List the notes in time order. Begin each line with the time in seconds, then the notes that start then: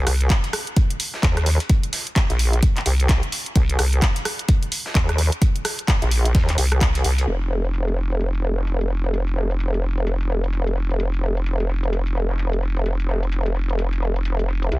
0.07 C2, cross-stick, closed hi-hat, open hi-hat
0.21 closed hi-hat
0.30 kick, snare, clap, closed hi-hat
0.44 closed hi-hat
0.53 cross-stick, closed hi-hat, open hi-hat
0.67 closed hi-hat
0.76 kick, closed hi-hat
0.90 closed hi-hat
1.00 closed hi-hat, open hi-hat
1.14 snare
1.23 D#2, kick, snare, clap, closed hi-hat
1.37 cross-stick, closed hi-hat
1.46 closed hi-hat, open hi-hat
1.60 closed hi-hat
1.70 kick, closed hi-hat
1.83 closed hi-hat
1.93 snare, closed hi-hat, open hi-hat
2.07 closed hi-hat
2.16 kick, snare, clap, closed hi-hat
2.30 A#1, closed hi-hat
2.39 closed hi-hat, open hi-hat
2.53 closed hi-hat
2.63 kick, closed hi-hat
2.77 clap, closed hi-hat
2.86 C2, closed hi-hat, open hi-hat
3.00 closed hi-hat
3.09 C2, kick, snare, clap, closed hi-hat
3.23 closed hi-hat
3.32 closed hi-hat, open hi-hat
3.46 closed hi-hat
3.56 C2, kick, closed hi-hat
3.70 closed hi-hat
3.79 C2, cross-stick, closed hi-hat, open hi-hat
3.93 closed hi-hat
4.02 kick, snare, clap, closed hi-hat
4.16 closed hi-hat
4.25 cross-stick, closed hi-hat, open hi-hat
4.39 closed hi-hat
4.49 kick, closed hi-hat
4.63 closed hi-hat
4.72 closed hi-hat, open hi-hat
4.86 snare
4.95 D#2, kick, snare, clap, closed hi-hat
5.09 cross-stick, closed hi-hat
5.18 open hi-hat
5.32 closed hi-hat
5.42 kick, closed hi-hat
5.56 closed hi-hat
5.65 cross-stick, snare, closed hi-hat, open hi-hat
5.79 closed hi-hat
5.88 kick, snare, clap, closed hi-hat
6.02 A#1, closed hi-hat
6.11 closed hi-hat, open hi-hat
6.25 closed hi-hat
6.35 D#2, kick, snare, closed hi-hat
6.49 clap, closed hi-hat
6.58 C2, closed hi-hat, open hi-hat
6.72 cross-stick, closed hi-hat
6.81 kick, clap, closed hi-hat
6.95 closed hi-hat
7.04 C2, open hi-hat
7.18 closed hi-hat
7.28 F1, closed hi-hat
7.42 closed hi-hat
7.51 closed hi-hat
7.65 closed hi-hat
7.74 closed hi-hat
7.88 closed hi-hat
7.98 closed hi-hat
8.11 closed hi-hat
8.21 closed hi-hat
8.35 closed hi-hat
8.44 closed hi-hat
8.58 snare
8.67 closed hi-hat
8.81 closed hi-hat
8.91 closed hi-hat
9.04 closed hi-hat
9.14 closed hi-hat
9.28 closed hi-hat
9.37 snare, closed hi-hat
9.51 closed hi-hat
9.60 closed hi-hat
9.74 closed hi-hat
9.84 closed hi-hat
9.98 closed hi-hat
10.07 closed hi-hat
10.21 closed hi-hat
10.30 closed hi-hat
10.44 closed hi-hat
10.53 closed hi-hat
10.67 closed hi-hat
10.77 closed hi-hat
10.91 closed hi-hat
11.00 closed hi-hat
11.14 closed hi-hat
11.23 closed hi-hat
11.37 closed hi-hat
11.46 closed hi-hat
11.60 closed hi-hat
11.70 closed hi-hat
11.84 closed hi-hat
11.93 closed hi-hat
12.07 closed hi-hat
12.16 closed hi-hat
12.30 snare
12.39 closed hi-hat
12.53 closed hi-hat
12.63 closed hi-hat
12.77 closed hi-hat
12.86 closed hi-hat
13.00 closed hi-hat
13.09 snare, closed hi-hat
13.23 closed hi-hat
13.32 closed hi-hat
13.46 closed hi-hat
13.56 closed hi-hat
13.70 closed hi-hat
13.79 closed hi-hat
13.93 closed hi-hat
14.02 closed hi-hat
14.16 closed hi-hat
14.25 closed hi-hat
14.39 closed hi-hat
14.49 closed hi-hat
14.63 closed hi-hat
14.72 C2, closed hi-hat